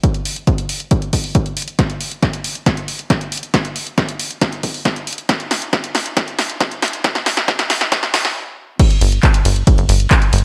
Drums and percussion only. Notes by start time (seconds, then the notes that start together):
0.03 kick, closed hi-hat
0.14 closed hi-hat
0.25 open hi-hat
0.36 closed hi-hat
0.47 kick, closed hi-hat
0.58 closed hi-hat
0.69 open hi-hat
0.80 closed hi-hat
0.91 kick, closed hi-hat
1.02 closed hi-hat
1.13 kick, open hi-hat
1.24 open hi-hat
1.35 kick, closed hi-hat
1.46 closed hi-hat
1.57 open hi-hat
1.62 closed hi-hat
1.68 closed hi-hat
1.79 kick, snare, closed hi-hat
1.90 closed hi-hat
2.01 open hi-hat
2.12 closed hi-hat
2.23 kick, snare, closed hi-hat
2.33 closed hi-hat
2.44 open hi-hat
2.55 closed hi-hat
2.66 kick, snare, closed hi-hat
2.77 closed hi-hat
2.88 open hi-hat
2.99 closed hi-hat
3.10 kick, snare, closed hi-hat
3.21 closed hi-hat
3.32 open hi-hat
3.37 closed hi-hat
3.43 closed hi-hat
3.54 kick, snare, closed hi-hat
3.65 closed hi-hat
3.76 open hi-hat
3.87 closed hi-hat
3.98 kick, snare, closed hi-hat
4.09 closed hi-hat
4.20 open hi-hat
4.31 closed hi-hat
4.41 kick, snare, closed hi-hat
4.52 closed hi-hat
4.63 kick, open hi-hat
4.74 open hi-hat
4.85 kick, snare, closed hi-hat
4.96 closed hi-hat
5.07 open hi-hat
5.13 closed hi-hat
5.18 closed hi-hat
5.29 kick, snare, closed hi-hat
5.40 closed hi-hat
5.51 snare, open hi-hat
5.62 closed hi-hat
5.73 kick, snare, closed hi-hat
5.84 closed hi-hat
5.95 snare, open hi-hat
6.06 closed hi-hat
6.17 kick, snare, closed hi-hat
6.28 closed hi-hat
6.39 snare, open hi-hat
6.50 closed hi-hat
6.61 kick, snare, closed hi-hat
6.71 closed hi-hat
6.82 snare, open hi-hat
6.88 closed hi-hat
6.93 closed hi-hat
7.04 kick, snare, closed hi-hat
7.15 snare, closed hi-hat
7.26 snare, open hi-hat
7.37 snare, closed hi-hat
7.48 kick, snare, closed hi-hat
7.59 snare, closed hi-hat
7.70 snare, open hi-hat
7.81 snare, closed hi-hat
7.92 kick, snare, closed hi-hat
8.03 snare, closed hi-hat
8.14 kick, snare, open hi-hat
8.25 snare, open hi-hat
8.79 kick, closed hi-hat, crash, ride
8.90 closed hi-hat
9.01 open hi-hat, ride
9.12 closed hi-hat
9.23 kick, clap, closed hi-hat, ride
9.34 closed hi-hat
9.45 open hi-hat, ride
9.56 closed hi-hat
9.67 kick, closed hi-hat, ride
9.78 closed hi-hat
9.89 open hi-hat, ride
10.00 closed hi-hat
10.11 kick, clap, closed hi-hat, ride
10.22 closed hi-hat
10.33 open hi-hat, ride
10.38 closed hi-hat